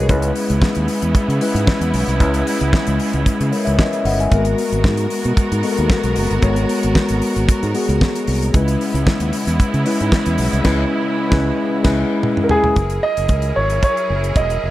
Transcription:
Already playing: G#3 F#4 G#4 A#4 B4 C#5 D#5
0.09 C#2 C#3 G#3 B3 C#4 E4 B4, kick, closed hi-hat
0.22 closed hi-hat
0.35 open hi-hat
0.50 C#2, closed hi-hat
0.62 kick, snare
0.75 D#2, closed hi-hat
0.88 open hi-hat
1.02 E2, closed hi-hat
1.15 kick, closed hi-hat
1.28 C#3, closed hi-hat
1.41 G#3 C#4 E4 B4, open hi-hat
1.55 G#2, closed hi-hat
1.67 kick, snare
1.81 E2, closed hi-hat
1.94 B1, open hi-hat
2.08 C2, closed hi-hat
2.19 C#2 G#3 C#4 E4 B4, kick, closed hi-hat
2.34 closed hi-hat
2.47 open hi-hat
2.61 C#2, closed hi-hat
2.73 kick, snare
2.87 C#2, closed hi-hat
3.00 open hi-hat
3.13 C#2, closed hi-hat
3.26 kick, closed hi-hat
3.40 C#3, closed hi-hat
3.52 A#4 C#5, open hi-hat
3.65 C#2 C#5 E5, closed hi-hat
3.79 B4 D#5, kick, snare
3.93 C#5 E5, closed hi-hat
4.05 G1 D#5 F#5, open hi-hat
4.20 E5 G#5, closed hi-hat
4.32 G#1 G#3 B3 F#4 A#4, kick, closed hi-hat
4.45 closed hi-hat
4.58 open hi-hat
4.72 G#1, closed hi-hat
4.84 G#2, kick, snare
4.97 closed hi-hat
5.10 open hi-hat
5.24 B2, closed hi-hat
5.37 muted fingered electric bass stroke, kick, closed hi-hat
5.52 G#2, closed hi-hat
5.63 G#3 B3 F#4 A4, open hi-hat
5.71 A#4
5.77 D#2, closed hi-hat
5.90 kick, snare
6.04 B1, closed hi-hat
6.16 F#1, open hi-hat
6.31 G1, closed hi-hat
6.42 G#1 G#3 B3 F#4 C#5, kick, closed hi-hat
6.56 closed hi-hat
6.69 open hi-hat
6.83 G#1, closed hi-hat
6.95 kick, snare
7.09 G#1, closed hi-hat
7.22 open hi-hat
7.36 G#1, closed hi-hat
7.49 kick, closed hi-hat
7.63 G#2, closed hi-hat
7.74 G#3 B3 F#4 G#4, open hi-hat
7.89 C#2, closed hi-hat
8.01 kick, snare
8.15 closed hi-hat
8.27 C2, open hi-hat
8.42 closed hi-hat
8.53 C#2 C#3 G#3 B3 C#4 E4 B4, kick, closed hi-hat
8.68 closed hi-hat
8.81 open hi-hat
8.94 C#2, closed hi-hat
9.07 kick, snare
9.20 D#2, closed hi-hat
9.33 open hi-hat
9.47 E2, snare, closed hi-hat
9.60 kick, closed hi-hat
9.74 C#3, closed hi-hat
9.86 G#3 C#4 E4 B4, open hi-hat
10.00 G#2, closed hi-hat
10.12 kick, snare
10.26 E2, closed hi-hat
10.38 B1, open hi-hat
10.53 C2, closed hi-hat
10.64 C#2 G#3 C#4 E4 B4, kick, snare, crash
11.30 C#2 G#3 C#4 E4 B4, kick, snare
11.83 C#2 G#3 C#4 E4 B4, kick, snare, crash
12.23 mid tom
12.37 mid tom
12.44 A#4
12.49 G#4, floor tom
12.64 floor tom
12.76 F#1 F#3 E4 G#4 A#4, kick, closed hi-hat
12.90 closed hi-hat
13.03 D#5
13.17 F#1, closed hi-hat
13.28 C#2, kick, closed hi-hat
13.42 closed hi-hat
13.56 G#1 C#5
13.70 closed hi-hat
13.83 C#5, kick, closed hi-hat
13.97 closed hi-hat
14.10 F#1
14.24 closed hi-hat
14.36 E1 D#5, kick, closed hi-hat
14.50 closed hi-hat
14.63 F1

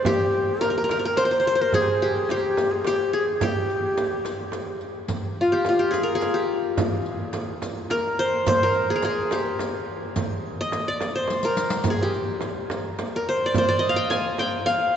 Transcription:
Already playing: C5 D5
0.03 G4, riq, frame drum
0.61 A#4, riq, frame drum
0.70 A#4
0.78 A#4
0.84 A#4
0.89 A#4, riq, frame drum
0.99 A#4
1.04 A#4
1.17 C5, riq, frame drum
1.25 C5
1.31 C5
1.40 C5
1.47 C5
1.55 C5
1.61 A#4 C5
1.73 G#4, riq, frame drum
1.81 G4
1.89 G#4
2.02 G4
2.29 G4, riq, frame drum
2.57 riq, frame drum
2.71 G#4
2.84 G4, riq, frame drum
3.13 G#4
3.41 G4, riq, frame drum
3.70 riq
3.97 riq, frame drum
4.25 riq, frame drum
4.52 riq, frame drum
4.81 riq
5.08 riq, frame drum
5.41 F4
5.52 G4
5.65 riq, frame drum
5.69 F4
5.79 G4
5.91 G#4, riq, frame drum
6.03 A#4
6.15 G#4
6.21 riq, frame drum
6.34 G4
6.77 riq, frame drum
7.06 riq
7.33 riq, frame drum
7.62 riq, frame drum
7.90 A#4, riq, frame drum
8.19 C5
8.46 C5, riq, frame drum
8.63 A#4
8.74 riq
8.90 G#4
8.96 A#4
9.02 G#4, riq, frame drum
9.31 G4, riq, frame drum
9.59 riq, frame drum
10.16 riq, frame drum
10.61 D#5
10.72 riq, frame drum
10.88 D5
11.01 riq, frame drum
11.15 C5
11.28 riq, frame drum
11.43 A#4, riq
11.57 riq
11.70 riq
11.84 riq, frame drum
11.90 G#4
12.03 G4
12.14 riq
12.41 riq, frame drum
12.70 riq, frame drum
12.99 riq, frame drum
13.16 A#4
13.29 C5
13.46 D5
13.54 C5, riq, frame drum
13.69 D5
13.79 D#5, riq
13.89 F5
13.96 G5
14.10 G#5, riq, frame drum
14.38 G5, riq, frame drum
14.66 F5, riq, frame drum

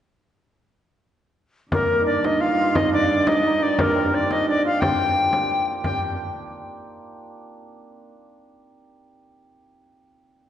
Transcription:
1.72 G2 A#3 A#4, frame drum
1.84 A#3
1.89 frame drum
1.95 A#3
2.01 D#4
2.06 D4 D5, frame drum
2.24 D#4 D#5, frame drum
2.40 F4 F5, frame drum
2.50 F4
2.61 F4
2.74 D#4 D#5, frame drum
2.92 D4 D5, frame drum
3.10 frame drum
3.26 D#4 D#5, frame drum
3.44 D#4, frame drum
3.61 D4 D5
3.79 A#3 A#4, frame drum
3.95 C4, frame drum
4.08 D#4
4.13 D4 D5, frame drum
4.30 D#4 D#5, frame drum
4.48 D4 D5, frame drum
4.65 F4 F5
4.81 G4 G5, frame drum
5.33 frame drum
5.50 frame drum
5.67 frame drum
5.84 G4 G5, frame drum

